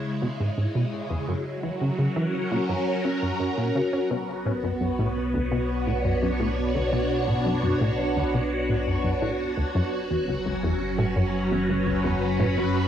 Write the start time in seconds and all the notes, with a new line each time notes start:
Already playing: C#3 G#3 E4
0.22 B2
0.40 G#2
0.58 G#2
0.75 B2
1.10 E2
1.28 F#2 F#3
1.58 A#4
1.63 E3
1.76 C#4
1.81 C#3
1.96 C#3 F#4
2.16 E3
2.51 A#2
2.69 F#2
3.05 C#4
3.22 F#2
3.40 F#2
3.58 A#2
3.75 C#3
3.93 C#4
4.10 B1 B2 B3 C#5
4.46 A2
4.53 C#5
4.63 F#2
4.81 F#2
4.99 A2
5.34 D2
5.52 B2 D4
5.87 A2
6.05 F#2
6.22 F#2
6.40 A2
6.75 D2
6.93 B2
7.28 A2
7.46 F#2
7.63 F#2
7.81 A2
8.16 D2
8.34 B2
8.69 A2
8.87 F#2
9.04 F#2
9.22 A2
9.57 D2
9.75 F#1 F#2 F#3
9.96 C#4
10.11 E2
10.28 C#2
10.46 C#2
10.63 E2
10.87 B4
10.98 A2
11.16 F#2
11.51 E2
11.69 C#2
11.87 C#2
12.04 E2
12.40 A2
12.57 F#2